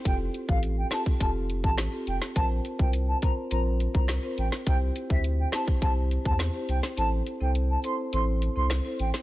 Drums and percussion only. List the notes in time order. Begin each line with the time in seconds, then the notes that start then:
0.05 kick, closed hi-hat
0.34 closed hi-hat
0.49 kick
0.63 closed hi-hat
0.91 cross-stick, snare, closed hi-hat
1.06 kick
1.21 kick, closed hi-hat
1.50 closed hi-hat
1.64 kick
1.78 cross-stick, snare, closed hi-hat
2.07 closed hi-hat
2.22 snare
2.36 kick, closed hi-hat
2.65 closed hi-hat
2.79 kick
2.93 closed hi-hat
3.22 kick, closed hi-hat
3.51 closed hi-hat
3.80 closed hi-hat
3.95 kick
4.08 cross-stick, snare, closed hi-hat
4.38 closed hi-hat
4.52 snare
4.67 kick, closed hi-hat
4.96 closed hi-hat
5.10 kick
5.24 closed hi-hat
5.52 cross-stick, snare, closed hi-hat
5.68 kick
5.82 kick, closed hi-hat
6.11 closed hi-hat
6.25 kick
6.39 cross-stick, snare, closed hi-hat
6.69 closed hi-hat
6.83 snare
6.97 closed hi-hat
7.26 closed hi-hat
7.55 closed hi-hat
7.84 closed hi-hat
8.13 closed hi-hat
8.42 closed hi-hat
8.70 cross-stick, snare, closed hi-hat
8.99 closed hi-hat
9.14 snare